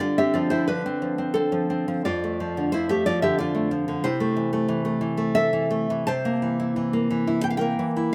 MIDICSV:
0, 0, Header, 1, 2, 480
1, 0, Start_track
1, 0, Tempo, 679502
1, 13, Time_signature, 3, 2, 24, 8
1, 1933, Tempo, 653595
1, 3853, Tempo, 721154
1, 4333, Tempo, 683371
1, 5790, End_track
2, 0, Start_track
2, 0, Title_t, "Nylon-string guitar"
2, 0, Program_c, 0, 24
2, 0, Note_on_c, 0, 50, 56
2, 0, Note_on_c, 0, 74, 76
2, 5, Note_on_c, 0, 65, 59
2, 121, Note_off_c, 0, 65, 0
2, 124, Note_off_c, 0, 74, 0
2, 127, Note_on_c, 0, 60, 46
2, 127, Note_on_c, 0, 76, 68
2, 133, Note_on_c, 0, 67, 54
2, 238, Note_on_c, 0, 74, 65
2, 243, Note_off_c, 0, 67, 0
2, 245, Note_on_c, 0, 53, 41
2, 246, Note_on_c, 0, 65, 57
2, 251, Note_off_c, 0, 76, 0
2, 349, Note_off_c, 0, 60, 0
2, 351, Note_off_c, 0, 74, 0
2, 354, Note_on_c, 0, 72, 75
2, 358, Note_on_c, 0, 60, 50
2, 362, Note_off_c, 0, 65, 0
2, 363, Note_on_c, 0, 64, 54
2, 474, Note_off_c, 0, 53, 0
2, 474, Note_off_c, 0, 72, 0
2, 477, Note_on_c, 0, 71, 76
2, 479, Note_off_c, 0, 60, 0
2, 479, Note_off_c, 0, 64, 0
2, 482, Note_on_c, 0, 53, 44
2, 485, Note_on_c, 0, 62, 55
2, 603, Note_off_c, 0, 53, 0
2, 606, Note_on_c, 0, 60, 49
2, 720, Note_on_c, 0, 53, 44
2, 827, Note_off_c, 0, 60, 0
2, 836, Note_on_c, 0, 60, 48
2, 925, Note_off_c, 0, 62, 0
2, 931, Note_off_c, 0, 71, 0
2, 945, Note_on_c, 0, 69, 74
2, 947, Note_off_c, 0, 60, 0
2, 956, Note_on_c, 0, 60, 58
2, 1066, Note_off_c, 0, 53, 0
2, 1074, Note_on_c, 0, 53, 47
2, 1192, Note_off_c, 0, 60, 0
2, 1200, Note_on_c, 0, 60, 44
2, 1319, Note_off_c, 0, 53, 0
2, 1327, Note_on_c, 0, 53, 49
2, 1424, Note_off_c, 0, 50, 0
2, 1432, Note_off_c, 0, 69, 0
2, 1448, Note_off_c, 0, 53, 0
2, 1448, Note_on_c, 0, 74, 75
2, 1451, Note_on_c, 0, 41, 58
2, 1455, Note_on_c, 0, 65, 64
2, 1456, Note_off_c, 0, 60, 0
2, 1580, Note_on_c, 0, 57, 50
2, 1697, Note_on_c, 0, 53, 50
2, 1817, Note_on_c, 0, 50, 50
2, 1902, Note_off_c, 0, 65, 0
2, 1908, Note_off_c, 0, 74, 0
2, 1922, Note_on_c, 0, 72, 76
2, 1923, Note_off_c, 0, 53, 0
2, 1929, Note_off_c, 0, 50, 0
2, 1932, Note_on_c, 0, 53, 52
2, 1936, Note_on_c, 0, 64, 65
2, 2040, Note_off_c, 0, 57, 0
2, 2046, Note_off_c, 0, 72, 0
2, 2047, Note_off_c, 0, 64, 0
2, 2048, Note_on_c, 0, 57, 52
2, 2049, Note_on_c, 0, 76, 79
2, 2056, Note_on_c, 0, 67, 60
2, 2165, Note_off_c, 0, 53, 0
2, 2167, Note_off_c, 0, 67, 0
2, 2167, Note_off_c, 0, 76, 0
2, 2170, Note_on_c, 0, 74, 81
2, 2174, Note_on_c, 0, 53, 50
2, 2178, Note_on_c, 0, 65, 62
2, 2287, Note_off_c, 0, 74, 0
2, 2288, Note_off_c, 0, 57, 0
2, 2288, Note_off_c, 0, 65, 0
2, 2290, Note_on_c, 0, 76, 79
2, 2291, Note_on_c, 0, 50, 51
2, 2299, Note_on_c, 0, 67, 63
2, 2407, Note_off_c, 0, 76, 0
2, 2408, Note_off_c, 0, 67, 0
2, 2410, Note_on_c, 0, 74, 76
2, 2423, Note_on_c, 0, 65, 62
2, 2525, Note_off_c, 0, 53, 0
2, 2528, Note_on_c, 0, 57, 52
2, 2638, Note_off_c, 0, 65, 0
2, 2638, Note_off_c, 0, 74, 0
2, 2646, Note_off_c, 0, 57, 0
2, 2649, Note_on_c, 0, 53, 49
2, 2763, Note_off_c, 0, 50, 0
2, 2772, Note_on_c, 0, 50, 53
2, 2855, Note_off_c, 0, 41, 0
2, 2888, Note_off_c, 0, 53, 0
2, 2888, Note_on_c, 0, 72, 84
2, 2890, Note_off_c, 0, 50, 0
2, 2892, Note_on_c, 0, 48, 66
2, 2895, Note_on_c, 0, 64, 62
2, 3010, Note_on_c, 0, 57, 53
2, 3129, Note_on_c, 0, 52, 51
2, 3239, Note_off_c, 0, 57, 0
2, 3248, Note_on_c, 0, 57, 56
2, 3355, Note_off_c, 0, 52, 0
2, 3364, Note_on_c, 0, 52, 54
2, 3475, Note_off_c, 0, 57, 0
2, 3484, Note_on_c, 0, 57, 53
2, 3593, Note_off_c, 0, 52, 0
2, 3602, Note_on_c, 0, 52, 53
2, 3715, Note_off_c, 0, 57, 0
2, 3724, Note_on_c, 0, 57, 53
2, 3824, Note_off_c, 0, 72, 0
2, 3827, Note_off_c, 0, 64, 0
2, 3851, Note_on_c, 0, 76, 91
2, 3862, Note_on_c, 0, 69, 59
2, 3964, Note_off_c, 0, 52, 0
2, 3972, Note_on_c, 0, 52, 57
2, 4081, Note_off_c, 0, 57, 0
2, 4089, Note_on_c, 0, 57, 48
2, 4212, Note_off_c, 0, 52, 0
2, 4220, Note_on_c, 0, 52, 55
2, 4308, Note_off_c, 0, 48, 0
2, 4311, Note_off_c, 0, 69, 0
2, 4313, Note_off_c, 0, 76, 0
2, 4330, Note_on_c, 0, 81, 103
2, 4332, Note_off_c, 0, 57, 0
2, 4334, Note_on_c, 0, 48, 61
2, 4336, Note_off_c, 0, 52, 0
2, 4340, Note_on_c, 0, 72, 75
2, 4458, Note_on_c, 0, 58, 56
2, 4579, Note_on_c, 0, 52, 52
2, 4701, Note_on_c, 0, 64, 58
2, 4809, Note_off_c, 0, 52, 0
2, 4817, Note_on_c, 0, 52, 47
2, 4929, Note_off_c, 0, 58, 0
2, 4935, Note_off_c, 0, 64, 0
2, 4937, Note_on_c, 0, 58, 52
2, 5050, Note_off_c, 0, 52, 0
2, 5059, Note_on_c, 0, 52, 51
2, 5175, Note_off_c, 0, 81, 0
2, 5178, Note_on_c, 0, 64, 57
2, 5264, Note_off_c, 0, 72, 0
2, 5289, Note_off_c, 0, 64, 0
2, 5292, Note_on_c, 0, 79, 70
2, 5336, Note_off_c, 0, 79, 0
2, 5339, Note_on_c, 0, 77, 58
2, 5384, Note_off_c, 0, 77, 0
2, 5387, Note_on_c, 0, 79, 76
2, 5394, Note_off_c, 0, 58, 0
2, 5396, Note_on_c, 0, 70, 59
2, 5414, Note_on_c, 0, 58, 55
2, 5531, Note_off_c, 0, 52, 0
2, 5537, Note_off_c, 0, 48, 0
2, 5540, Note_on_c, 0, 52, 48
2, 5663, Note_on_c, 0, 64, 53
2, 5751, Note_off_c, 0, 70, 0
2, 5758, Note_off_c, 0, 79, 0
2, 5774, Note_off_c, 0, 58, 0
2, 5776, Note_off_c, 0, 52, 0
2, 5778, Note_off_c, 0, 64, 0
2, 5790, End_track
0, 0, End_of_file